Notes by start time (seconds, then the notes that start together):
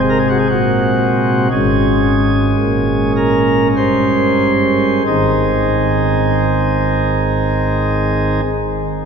Already playing: C3 G#3 C4
0.09 A#4
0.19 G#4
0.29 F#4
0.39 G#4
0.49 A#2 F#4
1.51 G#1 G#2 G#3 C#4 G#4
2.59 A#2
3.16 A#4
3.76 G2 C5
5.06 G#1 G#2 D#3 C4 D#4 G#4